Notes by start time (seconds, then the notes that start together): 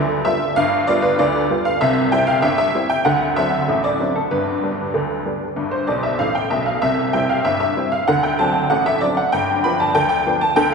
Already playing: D2 D3 D5
0.25 G3 B3 F4 E5
0.56 G1 G2 F5
0.87 G3 B3 F4 D5
1.02 B4
1.19 D2 D3 D5
1.50 G3 B3 F4
1.65 F5
1.81 C2 C3 E5
2.12 G3 C4 E4 G5
2.27 F5
2.42 G1 G2 E5
2.58 E5
2.74 G3 C4 E4
2.90 G5
3.05 D2 D3 F#5
3.36 F#3 C4 D4 E5
3.68 A1 A2
3.84 D5
4.00 F#3 C4 D4
4.15 A4
4.31 G1 G2 B4
4.63 G3 B3 D4
4.94 D2 D3
5.25 G3 B3 D4
5.56 G1 G2
5.71 C5
5.87 B1 B2 D5
6.03 E5
6.19 A1 A2 F5
6.35 G5
6.50 B1 B2 E5
6.66 F5
6.82 C2 C3 E5
7.13 G3 C4 E4 G5
7.29 F5
7.44 G1 G2 E5
7.60 E5
7.76 G3 C4 E4
7.92 F5
8.08 D2 D3 F#5
8.23 G5
8.39 F#3 C4 D4 A5
8.70 A1 A2 F#5
8.86 E5
9.01 F#3 C4 D4 D5
9.17 F#5
9.32 G1 G2 G5
9.64 F3 B3 D4 B5
9.80 A5
9.95 D2 D3 G5
10.09 G5
10.26 F3 B3 D4
10.41 A5
10.56 D2 D3 G5